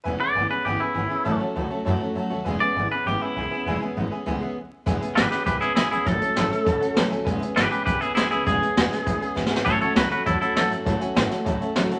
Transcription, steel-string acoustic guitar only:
X:1
M:4/4
L:1/8
Q:1/4=200
K:E
V:1 name="Steel-string acoustic guitar"
[E,B,CG] [B,CG] [E,B,CG] [B,CG] [E,B,CG] [B,CG] [E,B,CG] [B,CG] | [A,,E,F,A,CF] [F,A,CF] [F,A,CF] [F,A,CF] [A,,E,F,A,CF] [F,A,CF] [F,A,CF] [F,A,CF] | [E,G,B,CG] [B,CG] [G,B,CG] [B,CG] [E,G,B,CG] [B,CG] [G,B,CG] [B,CG] | [E,G,B,CG] [B,CG] [G,B,CG] [B,CG] [E,G,B,CG] [B,CG] z2 |
[E,G,B,CG] [B,CG] [E,G,CG] [B,CG] [G,B,CG] [B,CG] [E,G,B,C] [B,CG] | [A,,E,F,A,CA] [F,A,CA] [A,,E,F,A,CA] [F,A,CA] [F,A,CA] [F,A,CA] [A,,E,F,A,CA] [F,A,CA] | [E,G,B,CG] [B,CG] [E,G,B,CG] [B,CG] [G,B,CG] [B,CG] [E,G,B,CG] [B,CG] | [E,G,B,CG] [B,CG] [E,G,B,CG] [B,CG] [G,B,CG] [B,CG] [E,G,B,CG] [B,CG] |
[A,,E,F,A,CF] [F,A,CF] [A,,E,F,A,CF] [F,A,CF] [F,A,CF] [F,A,CF] [A,,E,F,A,CF] [F,A,CF] | [A,,E,F,A,CF] [F,A,CF] [A,,E,F,A,CF] [F,A,CF] [F,A,CF] [F,A,CF] [A,,E,F,A,CF] [F,A,CF] |]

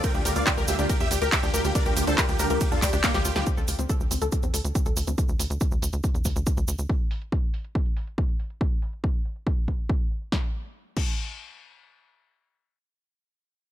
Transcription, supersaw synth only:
X:1
M:4/4
L:1/16
Q:1/4=140
K:Dm
V:1 name="Supersaw synth"
[Bg] G G [df] G G [Ge] G G [Ge] G G [Ge] G G G | [Bd] G G [Ac] G G [GB] G G [FA] G G [B,G] G G G | z16 | z16 |
z16 | z16 | z16 | z16 |]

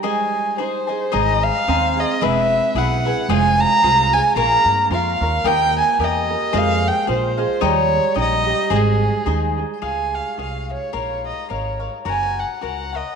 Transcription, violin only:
X:1
M:2/4
L:1/16
Q:"Swing" 1/4=110
K:Ab
V:1 name="Violin"
a4 c4 | e2 f4 e2 | =e4 _g4 | a2 b4 a2 |
b4 f4 | g2 a2 e4 | f2 g2 c4 | d4 e4 |
A6 z2 | [K:Db] a2 f2 f2 d2 | d2 e2 d3 z | a2 g2 g2 e2 |]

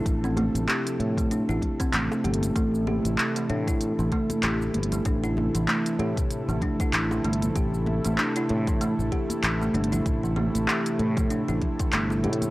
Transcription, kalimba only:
X:1
M:4/4
L:1/16
Q:"Swing 16ths" 1/4=96
K:Gmix
V:1 name="Kalimba"
z C A, z G3 A, D E z C A, z G2 | A, z G3 A, D E z E, A, z G3 A, | D E z E, A, z G3 A, D E z E, A, z | G3 A, D E z E, A, z G3 A, D E |
z E, A, z G3 A, D E z E, A, z G2 |]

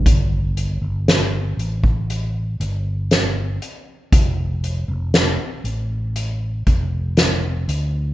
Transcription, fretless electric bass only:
X:1
M:4/4
L:1/16
Q:1/4=59
K:Gm
V:1 name="Fretless electric bass" clef=bass
G,,,3 G,,,3 A,,,4 G,,,4 z2 | F,,,3 F,,,2 z A,,,4 F,,,4 D,,2 |]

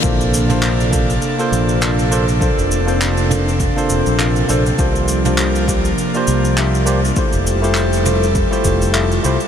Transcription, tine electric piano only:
X:1
M:4/4
L:1/16
Q:"Swing 16ths" 1/4=101
K:Bblyd
V:1 name="Tine electric piano"
[B,DFAc]3 [B,DFAc]3 [B,DFAc] z2 [B,DFAc]3 [B,DFAf]2 [B,DFAc] z | [B,DFAc]3 [B,DFAc]3 [B,DFAc] z2 [B,DFAc]3 [B,DFAf]2 [B,DFAc] z | [B,DFGc]3 [B,DFGc]3 [B,DFGc] z2 [B,DFGc]3 [B,DFGe]2 [B,DFGc] z | [A,EFGc]3 [A,EFGc]3 [A,EFGc] z2 [A,EFGc]3 [A,EFGe]2 [A,EFGc] z |]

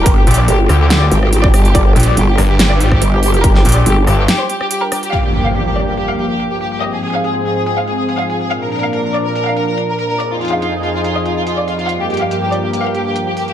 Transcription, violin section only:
X:1
M:4/4
L:1/16
Q:1/4=142
K:Gphr
V:1 name="Violin section"
B G G d G z G G G d G G G d G G | d G G d G G B G G d G G z G G G | B G G d G z G G G c G G G B G G | f G G f G G d G G f G G z G G G |
e A A f A z A A A f A A A f A A | f B B f B B d B B f B B z B B B | d F F f F z F F F e F F F d F F | f G G f G G d G G f G G z G G G |]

